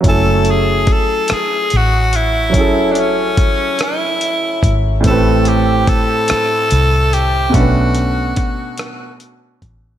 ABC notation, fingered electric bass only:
X:1
M:6/8
L:1/8
Q:3/8=48
K:F#m
V:1 name="Fingered electric bass" clef=bass
F,,,2 z2 A,,,2 | F,,,2 z3 G,,, | A,,,2 z2 =C,,2 | B,,,2 z3 A,,, |]